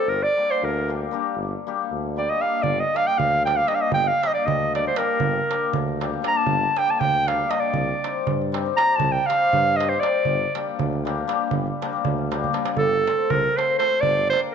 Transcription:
Already playing: hammered dulcimer G3, clarinet A4
0.06 tuba G1, clarinet A#4
0.23 clarinet D5
0.37 hammered dulcimer G3 A#3 D4 G4
0.51 clarinet C5
0.63 tuba D2, clarinet A#4
0.88 hammered dulcimer G3 A#3 D4 G4
1.11 hammered dulcimer G3 A#3 D4 G4
1.35 tuba G1
1.67 hammered dulcimer G3 A#3 D4 G4
1.90 tuba D2
2.16 hammered dulcimer G3 A#3 D4 G4, clarinet D5
2.30 clarinet D#5
2.40 hammered dulcimer G3 A#3 D4 G4, clarinet F5
2.63 tuba G1, clarinet D5, darbuka dum
2.80 clarinet D#5
2.94 hammered dulcimer G3 A#3 D4 G4, clarinet F5, darbuka tek
3.07 clarinet G5
3.18 tuba D2, clarinet F5, darbuka dum
3.34 darbuka tek
3.45 hammered dulcimer G3 A#3 D4 G4, clarinet G5, darbuka tek
3.57 clarinet F5, darbuka tek
3.68 hammered dulcimer G3 A#3 D4 G4, clarinet D#5, darbuka tek
3.75 clarinet F5
3.82 clarinet D#5
3.90 tuba G1, clarinet G5, darbuka dum
4.08 clarinet F5
4.23 hammered dulcimer G3 A#3 D4 G4, clarinet D#5, darbuka tek
4.34 clarinet D5
4.45 tuba D2, clarinet D#5, darbuka dum
4.61 darbuka tek
4.75 hammered dulcimer G3 A#3 D4 G4, clarinet D5, darbuka tek
4.87 clarinet C5, darbuka tek
4.96 hammered dulcimer G3 A#3 D4 G4, clarinet A#4, darbuka tek
5.20 tuba G1, darbuka dum
5.50 hammered dulcimer G3 A#3 D4 G4, darbuka tek
5.73 tuba D2, darbuka dum
5.88 darbuka tek
6.00 hammered dulcimer G3 A#3 D4 G4, darbuka tek
6.14 darbuka tek
6.22 hammered dulcimer G3 A#3 D4 G4, darbuka tek
6.28 clarinet A#5
6.37 clarinet A5
6.46 tuba G1, darbuka dum
6.76 hammered dulcimer G3 A#3 D4 G4, clarinet G5, darbuka tek
6.90 clarinet A5, darbuka tek
7.00 tuba D2, clarinet G5, darbuka dum
7.15 darbuka tek
7.28 hammered dulcimer G3 A#3 D4 G4, clarinet F5, darbuka tek
7.39 darbuka tek
7.50 hammered dulcimer G3 A#3 D4 G4, clarinet D#5, darbuka tek
7.60 clarinet D5, darbuka tek
7.73 tuba C2, darbuka dum
8.04 hammered dulcimer G3 C4 D#4 G4, darbuka tek
8.27 tuba G2, darbuka dum
8.41 darbuka tek
8.52 hammered dulcimer G3 C4 D#4 G4, darbuka tek
8.66 darbuka tek
8.76 hammered dulcimer G3 C4 D#4 G4, clarinet A#5, darbuka tek
8.96 tuba C2, clarinet A5, darbuka dum
9.12 clarinet G5
9.26 hammered dulcimer G3 C4, clarinet F5, darbuka tek
9.31 hammered dulcimer D#4 G4
9.53 tuba G2, darbuka dum
9.67 darbuka tek
9.77 hammered dulcimer G3, clarinet D#5, darbuka tek
9.81 hammered dulcimer C4 D#4 G4
9.89 clarinet C5, darbuka tek
10.00 hammered dulcimer G3 C4 D#4 G4, clarinet D5, darbuka tek
10.25 tuba G1, darbuka dum
10.54 hammered dulcimer G3 A#3 D4 G4, darbuka tek
10.79 tuba D2, darbuka dum
10.93 darbuka tek
11.05 hammered dulcimer G3 A#3 D4 G4, darbuka tek
11.18 darbuka tek
11.27 hammered dulcimer G3 A#3 D4 G4, darbuka tek
11.51 tuba G1, darbuka dum
11.67 darbuka tek
11.82 hammered dulcimer G3 A#3 D4 G4, darbuka tek
11.93 darbuka tek
12.05 tuba D2, darbuka dum
12.18 darbuka tek
12.31 hammered dulcimer G3 A#3 D4 G4, darbuka tek
12.44 darbuka dum
12.53 hammered dulcimer G3 A#3 D4 G4, darbuka tek
12.65 darbuka tek
12.76 tuba G1, clarinet A4, darbuka dum
12.92 darbuka tek
13.07 hammered dulcimer A3 C4 F4 A4, darbuka tek
13.30 tuba C2, clarinet A#4, darbuka dum
13.46 darbuka tek
13.57 hammered dulcimer A3 C4 F4 A4, clarinet C5, darbuka tek
13.70 darbuka tek
13.79 hammered dulcimer A3 C4 F4 A4, clarinet C5, darbuka tek
14.01 tuba G1, clarinet D5, darbuka dum
14.18 darbuka tek
14.30 hammered dulcimer A#3, clarinet C5, darbuka tek
14.34 hammered dulcimer D4 G4 A#4

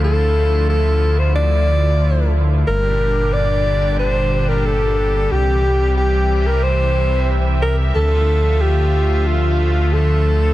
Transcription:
Already playing: detuned saw bass D2, analog synth pad D3 F3 A3 E4 F4
0.04 alto saxophone A4
0.70 alto saxophone A4
1.19 alto saxophone C5
1.35 alto saxophone D5
2.67 detuned saw bass G1, analog synth pad A#2 D3 G3 D4 G4, alto saxophone A#4
3.33 alto saxophone D5
3.99 alto saxophone C5
4.49 alto saxophone A#4
4.65 alto saxophone A4
5.31 detuned saw bass C2, analog synth pad C3 E3 E5, alto saxophone G4
5.97 alto saxophone G4
6.47 alto saxophone A#4
6.63 alto saxophone C5
7.62 alto saxophone A#4
7.95 detuned saw bass D2, analog synth pad D3 F3 A3 F4, alto saxophone A4
8.61 alto saxophone G4
9.27 alto saxophone F4
9.93 alto saxophone A4

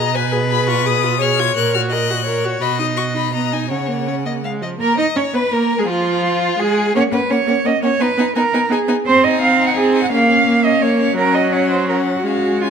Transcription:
Already playing: cello B2, viola G#4, violin D#5 A#5
0.14 viola B4, violin B4 G#5
0.32 viola G#4
0.50 viola G#4, violin B5
0.68 viola F4, violin C#6
0.85 viola G#4, violin D#6
1.04 viola F4
1.20 viola G#4, violin C#5 F6
1.39 viola F4, violin G#6
1.56 cello A#2, viola A#4, violin F#6
1.74 viola F#4, violin F6
1.90 viola A#4, violin D#5 F#6
2.10 viola F#4
2.25 viola A#4, violin C#5
2.45 viola F#4
2.61 cello B2, viola F#4, violin D#5 B5
2.79 viola D#4, violin D#6
2.97 viola F#4, violin C#6
3.14 viola D#4, violin B5
3.34 viola B3, violin D#5 A#5
3.53 viola D#4, violin G#5
3.70 cello C#3, viola C#4, violin C#5 F#5
3.88 viola A#3
4.07 viola C#4, violin C#5
4.25 viola A#3, violin D#5
4.43 viola G#3, violin F5
4.62 viola F3, violin D#5
4.79 viola A#3, violin A#4, cello A#4
4.98 viola D#4, violin D#5, cello D#5
5.16 viola C#4, violin C#5, cello C#5
5.33 viola B3, cello B4, violin B4
5.51 viola A#3, violin A#4, cello A#4
5.79 viola G#3, violin G#4, cello G#4
5.88 viola F3, violin F4, cello F4
6.59 viola G#3, violin G#4, cello G#4
6.95 viola A#3, violin C#4 F#5, cello C#5
7.11 viola A#3, violin C#4 F#5, cello B4
7.30 viola A#3, violin C#4 F#5, cello C#5
7.47 viola A#3, violin C#4 F#5
7.65 viola A#3, violin C#4 F#5, cello D#5
7.82 viola A#3, violin C#4 F#5, cello C#5
7.99 viola B3, violin D#4 G#5, cello B4
8.17 viola B3, violin D#4 G#5
8.35 viola B3, violin D#4 G#5, cello A#4
8.53 viola B3, violin D#4 G#5
8.69 viola B3, violin D#4 G#5, cello G#4
8.88 viola B3, violin D#4 G#5
9.06 viola C4, cello C5
9.23 violin D#4 G#5, cello D#5
9.41 viola C4, cello F5
9.58 violin D#4 G#5
9.67 cello F#5
9.76 viola C4, cello G#4
9.94 violin D#4 G#5
10.02 cello F#5
10.10 viola A#3, violin C#4 F5, cello F5
10.28 violin C#4 F5
10.46 viola A#3
10.63 violin C#4 F5, cello D#5
10.82 viola A#3, cello C#5
10.99 violin C#4 F5
11.16 viola F#3, violin C#4 F#5, cello A#4
11.34 cello D#5
11.52 violin C#4 F#5, cello C#5
11.70 cello C5
11.88 violin C#4 F#5, cello A#4
12.16 cello F#4
12.24 viola G#3, violin C#4 F5, cello F#4
12.61 violin C#4 G#5, cello F4

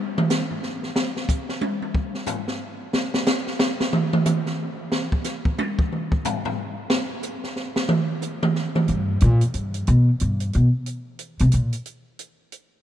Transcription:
0.18 mid tom
0.30 snare, hi-hat pedal
0.51 floor tom
0.63 snare
0.83 snare
0.96 snare
1.16 snare
1.29 kick, hi-hat pedal
1.49 snare
1.61 high tom
1.82 high tom
1.95 kick
2.15 snare
2.26 floor tom, hi-hat pedal
2.48 snare
2.93 snare
3.14 snare
3.26 snare, hi-hat pedal
3.47 snare
3.59 snare
3.80 snare
3.93 mid tom
4.13 mid tom
4.25 hi-hat pedal, mid tom
4.46 snare
4.92 snare
5.12 kick
5.24 snare, hi-hat pedal
5.45 kick
5.58 high tom
5.79 kick
5.92 mid tom
6.12 kick
6.25 floor tom, hi-hat pedal
6.45 floor tom
6.90 snare
7.23 hi-hat pedal
7.44 snare
7.56 snare
7.76 snare
7.89 mid tom
8.22 hi-hat pedal
8.43 mid tom
8.55 snare
8.75 mid tom
8.88 upright bass G2, closed hi-hat
9.20 upright bass A#2, closed hi-hat
9.41 closed hi-hat
9.54 upright bass G2, closed hi-hat
9.74 closed hi-hat
9.87 upright bass B2, closed hi-hat
10.20 upright bass G2, closed hi-hat
10.40 closed hi-hat
10.53 upright bass B2, closed hi-hat
10.86 closed hi-hat
11.19 closed hi-hat
11.39 upright bass C3, closed hi-hat
11.52 upright bass A#2, closed hi-hat
11.73 closed hi-hat
11.85 closed hi-hat
12.19 closed hi-hat
12.52 closed hi-hat

